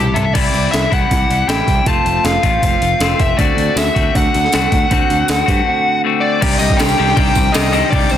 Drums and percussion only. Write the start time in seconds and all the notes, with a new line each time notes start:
0.16 closed hi-hat, floor tom
0.35 kick, open hi-hat, crash
0.54 open hi-hat
0.74 snare, open hi-hat
0.92 kick, open hi-hat
1.11 kick, open hi-hat
1.31 open hi-hat
1.49 snare, open hi-hat
1.67 kick, open hi-hat
1.86 kick, open hi-hat
2.06 open hi-hat
2.25 snare, open hi-hat
2.43 kick, open hi-hat
2.62 kick, open hi-hat
2.82 open hi-hat
3.00 snare, open hi-hat
3.20 kick, open hi-hat
3.39 kick, open hi-hat
3.58 open hi-hat
3.77 snare, open hi-hat, tambourine
3.96 kick, open hi-hat
4.15 kick, open hi-hat
4.34 open hi-hat
4.45 snare
4.52 snare, open hi-hat, tambourine
4.72 kick, open hi-hat
4.91 kick, open hi-hat
5.10 open hi-hat
5.28 snare, open hi-hat, tambourine
5.48 kick, open hi-hat
6.42 kick, crash
6.50 tambourine
6.59 tambourine
6.70 kick, tambourine
6.79 snare, tambourine, crash
6.89 tambourine
7.07 snare, tambourine
7.17 kick, crash
7.35 kick, tambourine
7.54 snare, tambourine, crash
7.73 tambourine
7.82 tambourine
7.93 kick, crash
8.00 tambourine
8.09 tambourine